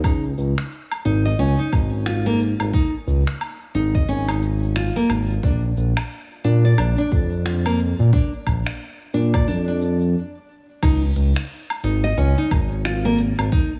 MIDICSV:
0, 0, Header, 1, 4, 480
1, 0, Start_track
1, 0, Tempo, 674157
1, 29, Time_signature, 4, 2, 24, 8
1, 9823, End_track
2, 0, Start_track
2, 0, Title_t, "Nylon-string guitar"
2, 0, Program_c, 0, 24
2, 32, Note_on_c, 0, 63, 76
2, 166, Note_off_c, 0, 63, 0
2, 749, Note_on_c, 0, 63, 71
2, 877, Note_off_c, 0, 63, 0
2, 893, Note_on_c, 0, 75, 67
2, 985, Note_off_c, 0, 75, 0
2, 991, Note_on_c, 0, 61, 72
2, 1125, Note_off_c, 0, 61, 0
2, 1132, Note_on_c, 0, 63, 72
2, 1224, Note_off_c, 0, 63, 0
2, 1468, Note_on_c, 0, 65, 74
2, 1597, Note_off_c, 0, 65, 0
2, 1610, Note_on_c, 0, 58, 92
2, 1703, Note_off_c, 0, 58, 0
2, 1948, Note_on_c, 0, 63, 80
2, 2084, Note_off_c, 0, 63, 0
2, 2668, Note_on_c, 0, 63, 70
2, 2797, Note_off_c, 0, 63, 0
2, 2811, Note_on_c, 0, 75, 70
2, 2904, Note_off_c, 0, 75, 0
2, 2909, Note_on_c, 0, 61, 76
2, 3044, Note_off_c, 0, 61, 0
2, 3050, Note_on_c, 0, 63, 72
2, 3143, Note_off_c, 0, 63, 0
2, 3390, Note_on_c, 0, 65, 78
2, 3518, Note_off_c, 0, 65, 0
2, 3531, Note_on_c, 0, 58, 99
2, 3624, Note_off_c, 0, 58, 0
2, 3870, Note_on_c, 0, 62, 80
2, 4005, Note_off_c, 0, 62, 0
2, 4588, Note_on_c, 0, 62, 76
2, 4717, Note_off_c, 0, 62, 0
2, 4733, Note_on_c, 0, 74, 70
2, 4825, Note_off_c, 0, 74, 0
2, 4828, Note_on_c, 0, 62, 78
2, 4962, Note_off_c, 0, 62, 0
2, 4970, Note_on_c, 0, 62, 77
2, 5064, Note_off_c, 0, 62, 0
2, 5307, Note_on_c, 0, 65, 82
2, 5436, Note_off_c, 0, 65, 0
2, 5451, Note_on_c, 0, 58, 98
2, 5544, Note_off_c, 0, 58, 0
2, 5789, Note_on_c, 0, 62, 81
2, 5924, Note_off_c, 0, 62, 0
2, 6508, Note_on_c, 0, 62, 74
2, 6637, Note_off_c, 0, 62, 0
2, 6651, Note_on_c, 0, 74, 74
2, 6744, Note_off_c, 0, 74, 0
2, 6748, Note_on_c, 0, 62, 76
2, 6884, Note_off_c, 0, 62, 0
2, 6891, Note_on_c, 0, 62, 76
2, 6984, Note_off_c, 0, 62, 0
2, 7707, Note_on_c, 0, 63, 84
2, 7844, Note_off_c, 0, 63, 0
2, 8429, Note_on_c, 0, 63, 73
2, 8557, Note_off_c, 0, 63, 0
2, 8571, Note_on_c, 0, 75, 74
2, 8664, Note_off_c, 0, 75, 0
2, 8668, Note_on_c, 0, 61, 81
2, 8804, Note_off_c, 0, 61, 0
2, 8814, Note_on_c, 0, 63, 79
2, 8905, Note_off_c, 0, 63, 0
2, 9150, Note_on_c, 0, 65, 80
2, 9278, Note_off_c, 0, 65, 0
2, 9292, Note_on_c, 0, 58, 97
2, 9384, Note_off_c, 0, 58, 0
2, 9626, Note_on_c, 0, 63, 85
2, 9763, Note_off_c, 0, 63, 0
2, 9823, End_track
3, 0, Start_track
3, 0, Title_t, "Analog synth bass"
3, 0, Program_c, 1, 38
3, 28, Note_on_c, 1, 37, 93
3, 234, Note_off_c, 1, 37, 0
3, 269, Note_on_c, 1, 37, 84
3, 386, Note_off_c, 1, 37, 0
3, 749, Note_on_c, 1, 32, 87
3, 954, Note_off_c, 1, 32, 0
3, 987, Note_on_c, 1, 37, 94
3, 1105, Note_off_c, 1, 37, 0
3, 1227, Note_on_c, 1, 32, 86
3, 1810, Note_off_c, 1, 32, 0
3, 1850, Note_on_c, 1, 32, 95
3, 1931, Note_off_c, 1, 32, 0
3, 2188, Note_on_c, 1, 37, 82
3, 2306, Note_off_c, 1, 37, 0
3, 2668, Note_on_c, 1, 32, 86
3, 2874, Note_off_c, 1, 32, 0
3, 2908, Note_on_c, 1, 32, 89
3, 3491, Note_off_c, 1, 32, 0
3, 3628, Note_on_c, 1, 32, 80
3, 3834, Note_off_c, 1, 32, 0
3, 3869, Note_on_c, 1, 34, 88
3, 4074, Note_off_c, 1, 34, 0
3, 4108, Note_on_c, 1, 34, 82
3, 4226, Note_off_c, 1, 34, 0
3, 4588, Note_on_c, 1, 46, 88
3, 4794, Note_off_c, 1, 46, 0
3, 4828, Note_on_c, 1, 34, 89
3, 4946, Note_off_c, 1, 34, 0
3, 5068, Note_on_c, 1, 41, 90
3, 5651, Note_off_c, 1, 41, 0
3, 5691, Note_on_c, 1, 46, 99
3, 5772, Note_off_c, 1, 46, 0
3, 6029, Note_on_c, 1, 34, 84
3, 6146, Note_off_c, 1, 34, 0
3, 6506, Note_on_c, 1, 46, 83
3, 6747, Note_on_c, 1, 41, 83
3, 6758, Note_off_c, 1, 46, 0
3, 7228, Note_off_c, 1, 41, 0
3, 7708, Note_on_c, 1, 37, 101
3, 7914, Note_off_c, 1, 37, 0
3, 7948, Note_on_c, 1, 37, 86
3, 8066, Note_off_c, 1, 37, 0
3, 8427, Note_on_c, 1, 32, 91
3, 8634, Note_off_c, 1, 32, 0
3, 8666, Note_on_c, 1, 37, 100
3, 8785, Note_off_c, 1, 37, 0
3, 8908, Note_on_c, 1, 32, 88
3, 9491, Note_off_c, 1, 32, 0
3, 9530, Note_on_c, 1, 32, 96
3, 9611, Note_off_c, 1, 32, 0
3, 9823, End_track
4, 0, Start_track
4, 0, Title_t, "Drums"
4, 28, Note_on_c, 9, 36, 112
4, 30, Note_on_c, 9, 77, 81
4, 31, Note_on_c, 9, 82, 45
4, 100, Note_off_c, 9, 36, 0
4, 101, Note_off_c, 9, 77, 0
4, 102, Note_off_c, 9, 82, 0
4, 174, Note_on_c, 9, 82, 22
4, 246, Note_off_c, 9, 82, 0
4, 271, Note_on_c, 9, 82, 67
4, 342, Note_off_c, 9, 82, 0
4, 413, Note_on_c, 9, 26, 67
4, 414, Note_on_c, 9, 82, 32
4, 484, Note_off_c, 9, 26, 0
4, 485, Note_off_c, 9, 82, 0
4, 511, Note_on_c, 9, 82, 42
4, 582, Note_off_c, 9, 82, 0
4, 651, Note_on_c, 9, 77, 80
4, 653, Note_on_c, 9, 82, 20
4, 723, Note_off_c, 9, 77, 0
4, 724, Note_off_c, 9, 82, 0
4, 750, Note_on_c, 9, 82, 76
4, 822, Note_off_c, 9, 82, 0
4, 893, Note_on_c, 9, 82, 32
4, 964, Note_off_c, 9, 82, 0
4, 991, Note_on_c, 9, 82, 42
4, 1062, Note_off_c, 9, 82, 0
4, 1134, Note_on_c, 9, 82, 20
4, 1205, Note_off_c, 9, 82, 0
4, 1228, Note_on_c, 9, 36, 105
4, 1230, Note_on_c, 9, 77, 74
4, 1231, Note_on_c, 9, 82, 77
4, 1299, Note_off_c, 9, 36, 0
4, 1301, Note_off_c, 9, 77, 0
4, 1302, Note_off_c, 9, 82, 0
4, 1374, Note_on_c, 9, 82, 29
4, 1445, Note_off_c, 9, 82, 0
4, 1468, Note_on_c, 9, 26, 68
4, 1469, Note_on_c, 9, 82, 41
4, 1539, Note_off_c, 9, 26, 0
4, 1540, Note_off_c, 9, 82, 0
4, 1614, Note_on_c, 9, 82, 21
4, 1685, Note_off_c, 9, 82, 0
4, 1709, Note_on_c, 9, 82, 70
4, 1780, Note_off_c, 9, 82, 0
4, 1851, Note_on_c, 9, 77, 75
4, 1852, Note_on_c, 9, 82, 33
4, 1922, Note_off_c, 9, 77, 0
4, 1923, Note_off_c, 9, 82, 0
4, 1947, Note_on_c, 9, 36, 109
4, 1951, Note_on_c, 9, 82, 45
4, 2019, Note_off_c, 9, 36, 0
4, 2022, Note_off_c, 9, 82, 0
4, 2092, Note_on_c, 9, 82, 22
4, 2163, Note_off_c, 9, 82, 0
4, 2191, Note_on_c, 9, 82, 69
4, 2262, Note_off_c, 9, 82, 0
4, 2331, Note_on_c, 9, 26, 71
4, 2332, Note_on_c, 9, 82, 32
4, 2402, Note_off_c, 9, 26, 0
4, 2403, Note_off_c, 9, 82, 0
4, 2428, Note_on_c, 9, 77, 79
4, 2430, Note_on_c, 9, 82, 42
4, 2500, Note_off_c, 9, 77, 0
4, 2501, Note_off_c, 9, 82, 0
4, 2572, Note_on_c, 9, 82, 21
4, 2643, Note_off_c, 9, 82, 0
4, 2668, Note_on_c, 9, 82, 72
4, 2739, Note_off_c, 9, 82, 0
4, 2810, Note_on_c, 9, 36, 93
4, 2811, Note_on_c, 9, 82, 29
4, 2881, Note_off_c, 9, 36, 0
4, 2883, Note_off_c, 9, 82, 0
4, 2909, Note_on_c, 9, 82, 43
4, 2980, Note_off_c, 9, 82, 0
4, 3051, Note_on_c, 9, 77, 82
4, 3052, Note_on_c, 9, 82, 22
4, 3122, Note_off_c, 9, 77, 0
4, 3123, Note_off_c, 9, 82, 0
4, 3149, Note_on_c, 9, 82, 72
4, 3221, Note_off_c, 9, 82, 0
4, 3293, Note_on_c, 9, 82, 32
4, 3364, Note_off_c, 9, 82, 0
4, 3389, Note_on_c, 9, 26, 74
4, 3390, Note_on_c, 9, 82, 39
4, 3460, Note_off_c, 9, 26, 0
4, 3461, Note_off_c, 9, 82, 0
4, 3533, Note_on_c, 9, 82, 20
4, 3604, Note_off_c, 9, 82, 0
4, 3629, Note_on_c, 9, 77, 75
4, 3630, Note_on_c, 9, 82, 66
4, 3700, Note_off_c, 9, 77, 0
4, 3701, Note_off_c, 9, 82, 0
4, 3771, Note_on_c, 9, 82, 32
4, 3843, Note_off_c, 9, 82, 0
4, 3868, Note_on_c, 9, 36, 111
4, 3870, Note_on_c, 9, 82, 42
4, 3940, Note_off_c, 9, 36, 0
4, 3941, Note_off_c, 9, 82, 0
4, 4012, Note_on_c, 9, 82, 22
4, 4083, Note_off_c, 9, 82, 0
4, 4110, Note_on_c, 9, 82, 69
4, 4181, Note_off_c, 9, 82, 0
4, 4250, Note_on_c, 9, 26, 69
4, 4250, Note_on_c, 9, 77, 76
4, 4251, Note_on_c, 9, 82, 30
4, 4321, Note_off_c, 9, 26, 0
4, 4321, Note_off_c, 9, 77, 0
4, 4322, Note_off_c, 9, 82, 0
4, 4349, Note_on_c, 9, 82, 43
4, 4420, Note_off_c, 9, 82, 0
4, 4492, Note_on_c, 9, 82, 21
4, 4564, Note_off_c, 9, 82, 0
4, 4589, Note_on_c, 9, 82, 76
4, 4660, Note_off_c, 9, 82, 0
4, 4732, Note_on_c, 9, 82, 31
4, 4804, Note_off_c, 9, 82, 0
4, 4828, Note_on_c, 9, 77, 82
4, 4829, Note_on_c, 9, 82, 42
4, 4899, Note_off_c, 9, 77, 0
4, 4900, Note_off_c, 9, 82, 0
4, 4971, Note_on_c, 9, 82, 21
4, 5042, Note_off_c, 9, 82, 0
4, 5068, Note_on_c, 9, 82, 70
4, 5069, Note_on_c, 9, 36, 102
4, 5140, Note_off_c, 9, 36, 0
4, 5140, Note_off_c, 9, 82, 0
4, 5212, Note_on_c, 9, 82, 29
4, 5283, Note_off_c, 9, 82, 0
4, 5310, Note_on_c, 9, 26, 71
4, 5311, Note_on_c, 9, 82, 38
4, 5381, Note_off_c, 9, 26, 0
4, 5382, Note_off_c, 9, 82, 0
4, 5452, Note_on_c, 9, 77, 75
4, 5453, Note_on_c, 9, 82, 20
4, 5523, Note_off_c, 9, 77, 0
4, 5524, Note_off_c, 9, 82, 0
4, 5548, Note_on_c, 9, 82, 68
4, 5619, Note_off_c, 9, 82, 0
4, 5692, Note_on_c, 9, 82, 32
4, 5764, Note_off_c, 9, 82, 0
4, 5788, Note_on_c, 9, 36, 108
4, 5789, Note_on_c, 9, 82, 47
4, 5860, Note_off_c, 9, 36, 0
4, 5860, Note_off_c, 9, 82, 0
4, 5932, Note_on_c, 9, 82, 22
4, 6003, Note_off_c, 9, 82, 0
4, 6028, Note_on_c, 9, 77, 75
4, 6029, Note_on_c, 9, 36, 58
4, 6029, Note_on_c, 9, 82, 68
4, 6099, Note_off_c, 9, 77, 0
4, 6100, Note_off_c, 9, 36, 0
4, 6100, Note_off_c, 9, 82, 0
4, 6169, Note_on_c, 9, 26, 77
4, 6171, Note_on_c, 9, 82, 29
4, 6241, Note_off_c, 9, 26, 0
4, 6242, Note_off_c, 9, 82, 0
4, 6267, Note_on_c, 9, 82, 44
4, 6338, Note_off_c, 9, 82, 0
4, 6410, Note_on_c, 9, 82, 20
4, 6481, Note_off_c, 9, 82, 0
4, 6507, Note_on_c, 9, 82, 69
4, 6578, Note_off_c, 9, 82, 0
4, 6649, Note_on_c, 9, 77, 77
4, 6650, Note_on_c, 9, 82, 32
4, 6651, Note_on_c, 9, 36, 97
4, 6720, Note_off_c, 9, 77, 0
4, 6721, Note_off_c, 9, 82, 0
4, 6722, Note_off_c, 9, 36, 0
4, 6747, Note_on_c, 9, 82, 43
4, 6818, Note_off_c, 9, 82, 0
4, 6890, Note_on_c, 9, 82, 20
4, 6961, Note_off_c, 9, 82, 0
4, 6988, Note_on_c, 9, 82, 75
4, 7059, Note_off_c, 9, 82, 0
4, 7130, Note_on_c, 9, 82, 30
4, 7201, Note_off_c, 9, 82, 0
4, 7708, Note_on_c, 9, 36, 114
4, 7708, Note_on_c, 9, 49, 104
4, 7708, Note_on_c, 9, 77, 78
4, 7709, Note_on_c, 9, 82, 49
4, 7779, Note_off_c, 9, 36, 0
4, 7779, Note_off_c, 9, 49, 0
4, 7779, Note_off_c, 9, 77, 0
4, 7780, Note_off_c, 9, 82, 0
4, 7852, Note_on_c, 9, 82, 23
4, 7923, Note_off_c, 9, 82, 0
4, 7948, Note_on_c, 9, 42, 87
4, 7949, Note_on_c, 9, 82, 79
4, 8019, Note_off_c, 9, 42, 0
4, 8020, Note_off_c, 9, 82, 0
4, 8091, Note_on_c, 9, 26, 77
4, 8092, Note_on_c, 9, 82, 32
4, 8162, Note_off_c, 9, 26, 0
4, 8163, Note_off_c, 9, 82, 0
4, 8190, Note_on_c, 9, 82, 43
4, 8261, Note_off_c, 9, 82, 0
4, 8332, Note_on_c, 9, 77, 76
4, 8333, Note_on_c, 9, 82, 22
4, 8403, Note_off_c, 9, 77, 0
4, 8404, Note_off_c, 9, 82, 0
4, 8430, Note_on_c, 9, 42, 96
4, 8431, Note_on_c, 9, 82, 74
4, 8501, Note_off_c, 9, 42, 0
4, 8502, Note_off_c, 9, 82, 0
4, 8571, Note_on_c, 9, 82, 34
4, 8643, Note_off_c, 9, 82, 0
4, 8671, Note_on_c, 9, 82, 46
4, 8742, Note_off_c, 9, 82, 0
4, 8814, Note_on_c, 9, 82, 22
4, 8885, Note_off_c, 9, 82, 0
4, 8908, Note_on_c, 9, 36, 106
4, 8909, Note_on_c, 9, 42, 91
4, 8909, Note_on_c, 9, 77, 81
4, 8910, Note_on_c, 9, 82, 80
4, 8979, Note_off_c, 9, 36, 0
4, 8980, Note_off_c, 9, 42, 0
4, 8980, Note_off_c, 9, 77, 0
4, 8981, Note_off_c, 9, 82, 0
4, 9052, Note_on_c, 9, 82, 29
4, 9123, Note_off_c, 9, 82, 0
4, 9150, Note_on_c, 9, 26, 81
4, 9151, Note_on_c, 9, 82, 43
4, 9221, Note_off_c, 9, 26, 0
4, 9222, Note_off_c, 9, 82, 0
4, 9292, Note_on_c, 9, 82, 20
4, 9363, Note_off_c, 9, 82, 0
4, 9388, Note_on_c, 9, 42, 89
4, 9389, Note_on_c, 9, 82, 75
4, 9459, Note_off_c, 9, 42, 0
4, 9460, Note_off_c, 9, 82, 0
4, 9532, Note_on_c, 9, 77, 86
4, 9533, Note_on_c, 9, 82, 35
4, 9603, Note_off_c, 9, 77, 0
4, 9604, Note_off_c, 9, 82, 0
4, 9628, Note_on_c, 9, 36, 120
4, 9628, Note_on_c, 9, 82, 51
4, 9699, Note_off_c, 9, 36, 0
4, 9699, Note_off_c, 9, 82, 0
4, 9772, Note_on_c, 9, 82, 24
4, 9823, Note_off_c, 9, 82, 0
4, 9823, End_track
0, 0, End_of_file